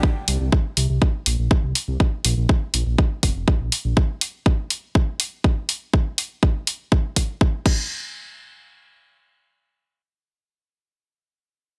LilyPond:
<<
  \new Staff \with { instrumentName = "Detuned saw bass" } { \clef bass \time 4/4 \key bes \mixolydian \tempo 4 = 122 r8 c,16 c,16 r8 c,16 c,16 r8 bes,,16 bes,,16 r16 c,16 r16 c,16 | r8 bes,,16 bes,,16 r8 bes,,16 bes,,16 r8 f,,16 f,,16 r16 bes,,16 r16 bes,,16 | r1 | r1 |
r1 | r1 | }
  \new DrumStaff \with { instrumentName = "Drums" } \drummode { \time 4/4 bd8 hho8 bd8 hho8 bd8 hho8 bd8 hho8 | bd8 hho8 bd8 hho8 bd8 <hho bd>8 bd8 hho8 | bd8 hho8 bd8 hho8 bd8 hho8 bd8 hho8 | bd8 hho8 bd8 hho8 bd8 <hho bd>8 bd8 <cymc bd>8 |
r4 r4 r4 r4 | r4 r4 r4 r4 | }
>>